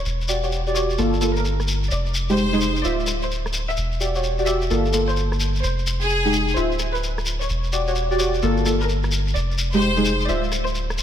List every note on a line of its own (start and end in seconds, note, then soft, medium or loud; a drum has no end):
0.00 0.16 C#5 medium
0.05 0.97 E1 medium
0.05 closed hi-hat medium
0.05 shekere soft
0.21 shekere soft
0.28 0.37 F#4 medium
0.28 0.37 G4 medium
0.28 0.37 D5 medium
0.28 shekere medium
0.43 0.48 F#4 medium
0.43 0.48 G4 medium
0.43 0.48 C#5 medium
0.43 closed hi-hat medium
0.43 shekere soft
0.52 shekere soft
0.67 0.74 F#4 medium
0.67 0.74 G4 medium
0.67 0.74 D5 medium
0.67 closed hi-hat medium
0.67 shekere soft
0.75 0.96 F#4 medium
0.75 0.96 G4 medium
0.75 0.88 C#5 medium
0.75 0.96 D5 medium
0.75 shekere medium
0.90 shekere soft
0.98 1.90 G1 medium
0.98 1.19 A#3 medium
0.98 1.19 F4 medium
0.98 1.19 A4 loud
0.98 closed hi-hat medium
0.98 shekere medium
1.14 shekere soft
1.21 1.30 A#3 medium
1.21 1.30 F4 medium
1.21 1.30 A4 medium
1.21 cross-stick soft
1.21 shekere medium
1.36 1.49 A#4 medium
1.36 shekere soft
1.45 shekere medium
1.60 cross-stick medium
1.60 closed hi-hat medium
1.60 shekere soft
1.68 shekere medium
1.83 closed hi-hat medium
1.83 shekere soft
1.91 2.83 F1 medium
1.91 2.09 D5 medium
1.91 closed hi-hat medium
1.91 shekere medium
2.06 shekere soft
2.14 shekere medium
2.29 2.34 G#3 medium
2.29 2.34 D#4 medium
2.29 2.34 G4 loud
2.29 2.78 C5 medium
2.29 closed hi-hat medium
2.29 shekere soft
2.37 shekere medium
2.53 2.57 G#3 medium
2.53 2.57 D#4 medium
2.53 2.57 G#4 loud
2.53 closed hi-hat soft
2.53 shekere soft
2.61 shekere medium
2.76 shekere soft
2.84 3.76 D1 medium
2.84 2.98 F4 medium
2.84 2.98 C5 medium
2.84 3.02 D5 loud
2.84 2.98 E5 medium
2.84 shekere medium
3.00 shekere soft
3.07 cross-stick soft
3.07 shekere loud
3.22 3.42 C5 medium
3.22 closed hi-hat soft
3.22 shekere soft
3.31 shekere soft
3.46 cross-stick medium
3.46 closed hi-hat medium
3.46 shekere soft
3.53 shekere medium
3.69 3.88 E5 medium
3.69 closed hi-hat medium
3.69 shekere soft
3.77 4.69 E1 medium
3.77 shekere medium
3.92 shekere soft
4.00 4.09 F#4 medium
4.00 4.09 G4 medium
4.00 4.09 D5 medium
4.00 closed hi-hat soft
4.00 shekere loud
4.15 4.20 F#4 medium
4.15 4.20 G4 medium
4.15 4.20 C#5 medium
4.15 closed hi-hat medium
4.15 shekere soft
4.24 shekere medium
4.39 4.46 F#4 medium
4.39 4.46 G4 medium
4.39 4.46 D5 medium
4.39 closed hi-hat soft
4.39 shekere soft
4.46 4.68 F#4 medium
4.46 4.68 G4 medium
4.46 4.68 D5 medium
4.46 4.60 E5 medium
4.46 shekere medium
4.62 shekere soft
4.70 5.62 G1 medium
4.70 4.92 A#3 medium
4.70 4.92 F4 medium
4.70 4.92 A4 loud
4.70 closed hi-hat medium
4.70 shekere medium
4.86 shekere soft
4.93 5.02 A#3 medium
4.93 5.02 F4 medium
4.93 5.02 A4 medium
4.93 cross-stick soft
4.93 shekere medium
5.09 5.21 C5 medium
5.09 shekere soft
5.17 shekere soft
5.32 cross-stick medium
5.32 closed hi-hat medium
5.32 shekere soft
5.40 shekere loud
5.55 closed hi-hat medium
5.55 shekere soft
5.63 6.55 F1 medium
5.63 5.81 C5 medium
5.63 closed hi-hat medium
5.63 shekere medium
5.79 shekere soft
5.87 closed hi-hat soft
5.87 shekere medium
6.01 6.50 G#4 medium
6.01 closed hi-hat medium
6.01 shekere soft
6.10 shekere soft
6.25 6.32 G#3 medium
6.25 6.32 D#4 medium
6.25 6.32 G4 loud
6.25 closed hi-hat soft
6.25 shekere soft
6.33 shekere medium
6.48 shekere soft
6.56 7.48 D1 medium
6.56 6.70 F4 medium
6.56 6.70 C5 medium
6.56 6.74 C5 loud
6.56 6.70 E5 medium
6.56 closed hi-hat medium
6.56 shekere medium
6.72 shekere soft
6.79 cross-stick soft
6.79 shekere medium
6.95 7.14 B4 medium
6.95 closed hi-hat soft
6.95 shekere soft
7.03 shekere medium
7.18 cross-stick medium
7.18 closed hi-hat medium
7.18 shekere soft
7.26 shekere loud
7.41 7.61 C#5 medium
7.41 closed hi-hat medium
7.41 shekere soft
7.49 8.41 E1 medium
7.49 closed hi-hat medium
7.49 shekere soft
7.64 shekere soft
7.73 7.81 F#4 medium
7.73 7.81 G4 medium
7.73 7.81 D5 medium
7.73 closed hi-hat soft
7.73 shekere medium
7.88 7.92 F#4 medium
7.88 7.92 G4 medium
7.88 7.92 C#5 medium
7.88 closed hi-hat medium
7.88 shekere soft
7.95 shekere medium
8.11 8.18 F#4 medium
8.11 8.18 G4 medium
8.11 8.18 D5 medium
8.11 closed hi-hat medium
8.11 shekere soft
8.19 8.40 F#4 medium
8.19 8.40 G4 medium
8.19 8.32 C#5 medium
8.19 8.40 D5 medium
8.19 shekere medium
8.34 shekere soft
8.42 9.34 G1 medium
8.42 8.64 A#3 loud
8.42 8.64 F4 medium
8.42 8.64 A4 loud
8.42 closed hi-hat medium
8.42 shekere soft
8.57 shekere soft
8.66 8.74 A#3 medium
8.66 8.74 F4 medium
8.66 8.74 A4 medium
8.66 cross-stick soft
8.66 shekere medium
8.81 8.93 A#4 medium
8.81 closed hi-hat soft
8.81 shekere soft
8.89 shekere soft
9.03 cross-stick medium
9.03 closed hi-hat medium
9.03 shekere soft
9.12 shekere medium
9.27 closed hi-hat medium
9.27 shekere soft
9.35 10.27 F1 medium
9.35 9.53 D5 medium
9.35 closed hi-hat medium
9.35 shekere medium
9.51 shekere soft
9.58 closed hi-hat soft
9.58 shekere medium
9.73 9.78 G#3 medium
9.73 9.78 D#4 medium
9.73 9.79 G4 medium
9.73 10.22 C5 medium
9.73 closed hi-hat medium
9.73 shekere soft
9.82 shekere medium
9.97 10.02 G#3 medium
9.97 10.02 D#4 medium
9.97 10.02 G#4 loud
9.97 closed hi-hat medium
9.97 shekere soft
10.05 shekere medium
10.21 shekere soft
10.28 11.03 D1 medium
10.28 10.42 F4 medium
10.28 10.42 C5 medium
10.28 10.46 D5 medium
10.28 10.42 E5 medium
10.28 closed hi-hat medium
10.28 shekere soft
10.44 shekere soft
10.52 cross-stick soft
10.52 shekere medium
10.67 10.86 C5 medium
10.67 closed hi-hat soft
10.67 shekere soft
10.75 shekere soft
10.90 cross-stick medium
10.90 closed hi-hat medium
10.90 shekere soft
10.98 shekere medium